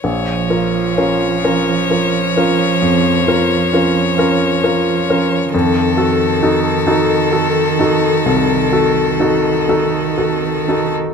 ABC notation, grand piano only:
X:1
M:12/8
L:1/8
Q:3/8=43
K:Bbm
V:1 name="Grand piano"
B,,, [FB] [DFB] [DFB] [FB] [DFB] F,, [FB] [DFB] [DFB] [FB] [DFB] | F,, [G=A] [EGA] [EGA] [GA] [EGA] C,, [GA] [EGA] [EGA] [GA] [EGA] |]